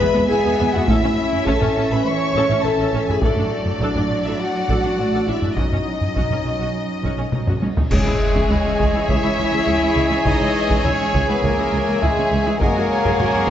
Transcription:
Already playing: trombone section B2 G#3, french horn section B4, violin section E5 B5
0.00 double bass section E2, cello section G#3, viola section B3 G#4, taiko
0.14 double bass section E2, viola section B3
0.28 double bass section E2, cello section B3, viola section B3 E4, french horn section G#4, violin section G#5
0.45 double bass section E2, viola section B3 G#4
0.59 double bass section E2, viola section B3
0.72 double bass section E2, viola section B3 E4, french horn section F#4, violin section F#5, taiko low-mid
0.87 double bass section A1, trombone section A2 C#4, cello section A3, viola section C#4 A4, french horn section E4, violin section E5, taiko
1.03 double bass section A1, viola section C#4, taiko low-mid
1.17 cello section C#4
1.33 taiko low-mid
1.47 double bass section A1, viola section C#4 A4, french horn section A4, violin section A5, taiko
1.62 double bass section A1, viola section C#4, taiko low-mid
1.76 double bass section A1, viola section C#4 E4
1.91 double bass section A1, viola section C#4 A4, french horn section B4, violin section B5
2.05 cello section E3, french horn section C#5, violin section C#6
2.34 double bass section A1, viola section C#4 A4, taiko
2.48 double bass section A1, viola section C#4
2.63 double bass section A1, viola section C#4 E4, french horn section A4, violin section A5
2.78 double bass section A1, viola section C#4 A4
2.93 double bass section A1, viola section C#4
3.06 double bass section A1, viola section C#4 E4, french horn section G#4, violin section G#5, taiko low-mid
3.22 double bass section A1, cello section F#3, french horn section A3, trombone section D4, viola section D4 A4, violin section A4 D5, taiko
3.36 double bass section A1, viola section D4, taiko low-mid
3.66 taiko low-mid
3.80 double bass section A1, viola section D4 A4, french horn section D4, violin section D5, taiko
3.94 double bass section A1, viola section D4, taiko low-mid
4.09 double bass section A1, viola section D4 F#4
4.24 double bass section A1, viola section D4 A4, french horn section E4, violin section E5
4.40 french horn section F#4, violin section F#5
4.68 double bass section A1, viola section D4 A4, taiko
4.83 double bass section A1, viola section D4
4.98 double bass section A1, cello section A3, viola section D4 F#4
5.13 double bass section A1, viola section D4 A4
5.27 double bass section A1, cello section G#3, viola section D4, french horn section E4, violin section E5
5.42 double bass section A1, viola section D4 F#4, taiko low-mid
5.56 double bass section B1, trombone section F#2 C#4, cello section F#3, viola section C#4 F#4, french horn section D#4, violin section D#5, taiko
5.71 double bass section B1, viola section C#4, taiko low-mid
6.01 taiko low-mid
6.15 double bass section B1, viola section C#4 F#4, taiko
6.29 double bass section B1, viola section C#4, taiko low-mid
6.44 double bass section B1, viola section C#4 D#4
6.58 double bass section B1, viola section C#4 F#4
7.03 double bass section B1, viola section C#4 F#4, taiko
7.18 double bass section B1, viola section C#4
7.32 double bass section B1, viola section C#4 D#4, taiko mid
7.47 double bass section B1, viola section C#4 F#4, taiko low-mid
7.61 double bass section B1, viola section C#4, taiko high
7.76 double bass section B1, viola section C#4 D#4, taiko low
7.89 cello section C#2, double bass section C#2, trombone section E3 G#3, french horn section G#3, viola section G#4 C#5, trumpet G#4, violin section G#4 E5 G#5, flute C#5, concert bass drum, taiko, crash, impact
8.06 cello section C#2, viola section E4
8.21 flute E5
8.34 cello section C#2, viola section G#4, taiko
8.49 cello section C#2, double bass section C#2, viola section E4, flute D#5, taiko low
8.64 cello section C#2, viola section C#4
8.78 cello section C#2, double bass section C#2, viola section G#4, taiko
8.93 cello section C#2, viola section E4
9.08 cello section C#2, double bass section C#2, french horn section E4, viola section G#4, flute C#5, violin section E5, taiko
9.22 cello section C#2, viola section E4
9.37 cello section C#2, double bass section C#2, viola section C#4
9.52 cello section C#2, viola section G#4
9.66 cello section C#2, double bass section C#2, viola section E4, flute E5, taiko low
9.81 cello section C#2, viola section C#4
9.96 cello section C#2, double bass section C#2, viola section G#4, flute D#5
10.10 cello section C#2, viola section E4
10.25 cello section C#2, double bass section C#2, french horn section D#4, viola section G#4, flute C#5, violin section D#5, taiko
10.39 cello section C#2, viola section E4
10.55 flute B4
10.69 cello section C#2, viola section G#4, taiko
10.84 double bass section C#2, cello section C#2, french horn section C#4, viola section E4, flute C#5, violin section C#5, taiko low
10.99 cello section C#2, viola section C#4
11.13 cello section C#2, double bass section C#2, viola section G#4, taiko
11.28 cello section C#2, french horn section B3, viola section E4, violin section B4
11.42 cello section C#2, double bass section C#2, french horn section A#3, viola section G#4, violin section A#4, taiko
11.57 cello section C#2, viola section E4
11.72 cello section C#2, double bass section C#2, viola section C#4
11.87 cello section C#2, viola section G#4
12.01 cello section C#2, double bass section C#2, french horn section G#3, viola section E4, violin section G#4, flute E5, taiko low
12.17 cello section C#2, viola section C#4
12.31 cello section C#2, double bass section C#2, viola section G#4
12.46 cello section C#2, viola section E4
12.60 double bass section F#1, cello section F#2, trombone section C#3 G#3, french horn section A#3, trumpet G#4, viola section G#4 C#5, violin section A#4 F#5 G#5, flute D#5, taiko
12.76 cello section F#2, viola section F#4
12.89 flute C#5
13.05 cello section F#2, viola section G#4, taiko
13.19 double bass section F#1, cello section F#2, viola section F#4, flute C#5, taiko low
13.34 cello section F#2, viola section C#4

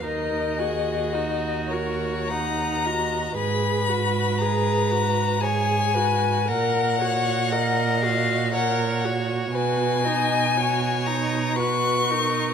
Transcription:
0.04 cello D#2, viola D#4, violin A#4 D#5
0.58 viola F#4, violin G#4
1.13 viola D#4, violin F#4
1.70 viola F#4, violin A#4 C#5
2.28 violin F#5 A#5
2.32 viola D#4
2.86 viola F#4, violin D#5
3.37 cello G#2, viola G#4, violin B4 B5
3.88 viola F#4
4.38 viola G#4, violin A#5
4.91 viola F#4
5.41 viola G#4, violin C#5 G#5
5.94 viola F#4, violin B4
6.47 cello A#2, viola A#4, violin A#4 F#5
7.01 viola F#4, violin C#5
7.52 viola A#4, violin D#5
8.03 viola F#4, violin F5
8.52 viola A#4, violin C#5 F#5
9.05 viola F#4
9.53 cello B2, viola F#4, violin B4 G#5
10.04 viola D#4, violin D#5
10.56 viola F#4, violin C#5
11.06 viola D#4, violin A#5
11.55 viola F#4, violin B4 C#6
12.10 viola D#4, violin A#4

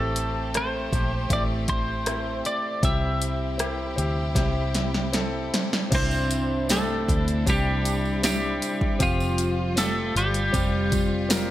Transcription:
Already playing: fingered electric bass A1, grand piano A2 E3 A3 C4 G4, string section A3 C4 G4, clean electric guitar A4
0.16 closed hi-hat
0.54 grand piano A3 C4 A4, clean electric guitar C5, cross-stick, closed hi-hat
0.92 fingered electric bass A#1, grand piano A3 C4 G4, kick, closed hi-hat
1.30 fingered electric bass A1, grand piano A3 C4 E4, clean electric guitar D5, kick, closed hi-hat
1.68 clean electric guitar C5, kick, closed hi-hat
2.06 grand piano A3 C4 E4, cross-stick, closed hi-hat
2.45 clean electric guitar D5, closed hi-hat
2.83 fingered electric bass C2, grand piano C3 G3 C4 E4 G4, string section C3 E4 G4, clean electric guitar E5, kick, closed hi-hat
3.22 closed hi-hat
3.58 grand piano C4 E4 G4, cross-stick, closed hi-hat
3.96 fingered electric bass D2, grand piano C4 E4 G4, closed hi-hat
4.35 fingered electric bass C2, grand piano C4 E4 G4, kick, snare, closed hi-hat
4.74 snare, closed hi-hat
4.94 snare
5.13 grand piano C4 E4 A4, snare, closed hi-hat
5.54 snare, closed hi-hat
5.73 snare
5.91 fingered electric bass C2, grand piano G2 C4 D4 E4, string section C3 C4 D4 E4, kick, closed hi-hat, crash, tambourine
5.95 clean electric guitar C4 C5
6.11 tambourine
6.31 closed hi-hat, tambourine
6.68 grand piano C4 D4 G4, clean electric guitar A4, snare, closed hi-hat, tambourine
6.72 clean electric guitar A3
7.09 fingered electric bass D2, kick, closed hi-hat
7.28 closed hi-hat
7.46 fingered electric bass C2, clean electric guitar G3 G4, grand piano C4 D4 G4, kick, closed hi-hat, tambourine
7.85 closed hi-hat, tambourine
8.05 tambourine
8.23 clean electric guitar G3 G4, grand piano C4 D4 E4, snare, closed hi-hat, tambourine
8.62 closed hi-hat, tambourine
8.81 kick
8.99 fingered electric bass F1, grand piano C3 C4 F4 G4, string section G3 F4, clean electric guitar F4, kick, closed hi-hat, tambourine
9.03 clean electric guitar F3
9.20 tambourine
9.38 closed hi-hat, tambourine
9.76 clean electric guitar A3 A4, grand piano C4 F4 G4, snare, closed hi-hat, tambourine
10.16 fingered electric bass G1, clean electric guitar G3 G4, closed hi-hat
10.34 closed hi-hat
10.53 fingered electric bass F1, grand piano C4 F4 G4, kick, closed hi-hat, tambourine
10.92 kick, closed hi-hat, tambourine
11.29 grand piano C4 F4 A#4, snare, closed hi-hat, tambourine

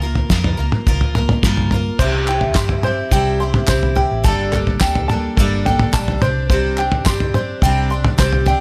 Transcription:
Already playing: fingered electric bass C#2
0.02 twelve-string acoustic guitar A#3 F4 A#4
0.15 floor tom
0.30 fingered electric bass F2, twelve-string acoustic guitar C#3 F3 A#3 F4 A#4, kick, snare
0.44 floor tom
0.57 fingered electric bass C#2, twelve-string acoustic guitar A#3 F4 A#4
0.72 mid tom
0.87 fingered electric bass C#2, twelve-string acoustic guitar F3 A#3 F4 A#4, kick, floor tom
1.01 floor tom
1.15 twelve-string acoustic guitar A#3 F4 A#4, mid tom
1.29 floor tom, mid tom
1.43 fingered electric bass G2, twelve-string acoustic guitar C#3 F3 A#3 F4 A#4, kick, snare
1.57 floor tom
1.71 twelve-string acoustic guitar F4 A#4, floor tom
1.75 twelve-string acoustic guitar A#3
1.99 fingered electric bass C2, twelve-string acoustic guitar C3 G3 C4 E4 G4, five-string banjo C5, kick, floor tom, crash
2.27 twelve-string acoustic guitar C4 E4 G4, five-string banjo G5, clap
2.41 floor tom
2.54 fingered electric bass G2, twelve-string acoustic guitar G3 C4 E4 G4, five-string banjo C6, kick, snare, clap, tambourine
2.69 floor tom
2.83 twelve-string acoustic guitar C4 E4 G4, five-string banjo C5, mid tom
3.11 fingered electric bass C2, twelve-string acoustic guitar C3 G3 C4 E4 G4, five-string banjo G5, kick, floor tom
3.40 twelve-string acoustic guitar C4 E4 G4, five-string banjo C6
3.54 floor tom, mid tom
3.68 fingered electric bass C2, twelve-string acoustic guitar G3 C4 E4 G4, five-string banjo C5, kick, snare, clap, mid tom, tambourine
3.83 floor tom
3.95 twelve-string acoustic guitar C4 E4 G4, five-string banjo G5, floor tom
4.11 fingered electric bass A1
4.24 fingered electric bass G1, twelve-string acoustic guitar G2 D3 G3 A#3 D4 A4, five-string banjo A5, kick, floor tom
4.52 twelve-string acoustic guitar G3 A#3 D4 A4, five-string banjo A4, clap, floor tom
4.67 floor tom
4.80 fingered electric bass D2, twelve-string acoustic guitar G3 A#3 D4 A4, five-string banjo G5, kick, snare, clap, tambourine
4.95 floor tom
5.08 twelve-string acoustic guitar A#3 D4 A4, five-string banjo A5, mid tom
5.12 twelve-string acoustic guitar G3
5.37 fingered electric bass G1, twelve-string acoustic guitar G2 D3 G3 A#3 D4 A4, five-string banjo A4, kick, floor tom
5.65 twelve-string acoustic guitar G3 A#3 D4 A4, five-string banjo G5, floor tom
5.79 floor tom, mid tom
5.93 fingered electric bass A#1, twelve-string acoustic guitar G3 A#3 D4 A4, five-string banjo A5, kick, clap, mid tom, tambourine
6.08 floor tom
6.22 fingered electric bass C2, twelve-string acoustic guitar C4 D4 G4, five-string banjo C5, floor tom, mid tom
6.50 twelve-string acoustic guitar C3 G3 C4 D4 G4, five-string banjo C5, kick, floor tom
6.77 twelve-string acoustic guitar C4 D4 G4, five-string banjo G5, clap
6.92 floor tom
7.06 fingered electric bass G2, twelve-string acoustic guitar G3 C4 D4 G4, five-string banjo C6, kick, snare, clap, tambourine
7.20 floor tom
7.34 twelve-string acoustic guitar C4 D4 G4, five-string banjo C5, mid tom
7.62 fingered electric bass C2, twelve-string acoustic guitar C3 G3 C4 D4 G4, five-string banjo G5, kick, floor tom
7.90 twelve-string acoustic guitar C4 D4 G4, five-string banjo C6
8.04 floor tom, mid tom
8.18 fingered electric bass C2, twelve-string acoustic guitar G3 C4 D4 G4, five-string banjo C5, kick, snare, clap, mid tom, tambourine
8.32 floor tom
8.46 twelve-string acoustic guitar C4 D4 G4, five-string banjo G5, floor tom

